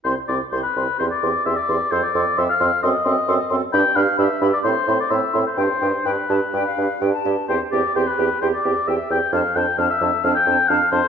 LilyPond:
<<
  \new Staff \with { instrumentName = "Flute" } { \time 4/4 \key c \major \tempo 4 = 131 c'''8 c'''8 c'''8 c'''8 c'''8 c'''8 c'''8 c'''8 | c'''8 c'''8 c'''8 c'''8 c'''8 c'''8 c'''8 c'''8 | b''8 b''8 b''8 b''8 c'''8 c'''8 c'''8 c'''8 | g''8 g''8 g''8 a''8 g''16 f''8. g''16 a''8. |
g''8 g''8 g''8 g''8 g''8 g''8 g''8 g''8 | a''8 a''8 a''8 a''8 a''8 a''8 a''8 a''8 | }
  \new Staff \with { instrumentName = "Oboe" } { \time 4/4 \key c \major c''8 d''8 c''16 b'8. c''16 d''8. e''16 d''8. | c''16 d''8. e''16 f''8. dis''4. r8 | g''8 f''8 e''8. d''16 c''8. d''16 e''8. c''16 | c''4 b'2~ b'8 r8 |
c''8 d''8 c''16 b'8. c''16 d''8. e''8 g''8 | f''8 g''8 f''16 e''8. f''16 g''8. f''8 c''8 | }
  \new Staff \with { instrumentName = "Clarinet" } { \time 4/4 \key c \major e'8 e'8 e'8 e'8 g'8 g'8 g'8 g'8 | a'8 a'8 a'8 a'8 a'8 a'8 a'8 a'8 | g'8 g'8 g'8 g'8 e'8 e'8 e'8 e'8 | g'8 g'8 g'8 g'8 g'8 g'8 g'8 g'8 |
g'8 g'8 g'8 g'8 g'8 g'8 g'8 g'8 | d'8 d'8 d'8 d'8 d'8 d'8 d'8 d'8 | }
  \new Staff \with { instrumentName = "French horn" } { \time 4/4 \key c \major c'8 c'8 c'8 c'8 c'8 c'8 c'8 c'8 | c'8 c'8 c'8 c'8 c'8 c'8 c'8 c'8 | d'8 d'8 d'8 d'8 c'8 c'8 c'8 c'8 | d'8 d'8 d'8 d'8 d'8 d'8 d'8 d'8 |
c'8 c'8 c'8 c'8 c'8 c'8 c'8 c'8 | c'8 c'8 c'8 c'8 c'8 c'8 c'8 c'8 | }
  \new Staff \with { instrumentName = "Bassoon" } { \clef bass \time 4/4 \key c \major c,8 c,8 c,8 c,8 e,8 e,8 e,8 e,8 | f,8 f,8 f,8 f,8 fis,8 fis,8 fis,8 fis,8 | g,8 g,8 g,8 g,8 a,8 a,8 a,8 a,8 | g,8 g,8 g,8 g,8 g,8 g,8 g,8 g,8 |
e,8 e,8 e,8 e,8 e,8 e,8 e,8 e,8 | f,8 f,8 f,8 f,8 f,8 f,8 f,8 f,8 | }
>>